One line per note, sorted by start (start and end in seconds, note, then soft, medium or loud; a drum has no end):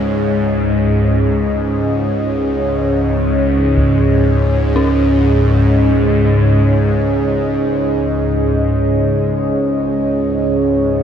0.00 11.03 C#2 medium
0.00 11.03 G#2 medium
0.00 11.03 C#4 medium
0.00 11.03 G#4 medium
0.00 11.03 C#5 medium
0.00 11.03 D#5 medium
3.76 taiko medium
4.76 10.76 C#4 medium